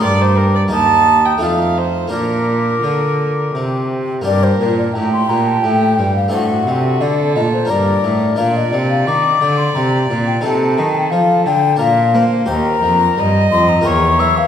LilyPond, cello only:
\new Staff \with { instrumentName = "Cello" } { \clef bass \time 3/4 \key bes \major \tempo 4 = 87 g,4 ees,4 f,4 | bes,4 d4 c4 | \key g \minor g,8 bes,8 a,8 bes,8 a,8 g,8 | a,8 c8 d8 bes,8 g,8 a,8 |
bes,8 c8 ees8 d8 c8 bes,8 | c8 ees8 f8 d8 bes,8 bes8 | \key c \dorian ees,8 f,8 g,8 f,8 e,8 e8 | }